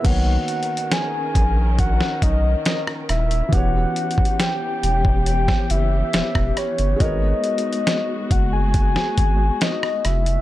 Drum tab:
CC |x-----------------------------------------------|------------------------------------------------|------------------------------------------------|
HH |x-----x-x-x-x-----x-----x-----x-----x-----x--x--|x-----x-x-x-x-----x-----x-----x-----x-----x--x--|x-----x-x-x-x-----x-----x-----x-----x-----x--x--|
SD |------------o--------------o--------o--r--r-----|------------o--------------o--------o--r--r-----|------------o--------------o--------o--r--r-----|
BD |o-----------------o-----o-----o-----------------|o--------o-----------o-----o-----------o--------|o-----------------o-----o-----o-----------------|